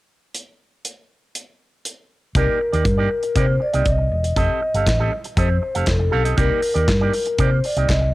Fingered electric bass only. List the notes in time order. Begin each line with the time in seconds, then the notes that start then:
2.35 C2
2.73 D#2
2.85 G2
3.36 C3
3.74 C2
3.86 C2
4.11 E1
4.36 F1
4.74 G1
4.87 A1
5.37 F2
5.76 F1
5.87 F1
6.13 B1
6.38 C2
6.75 D#2
6.88 G2
7.39 C3
7.76 C2
7.89 C2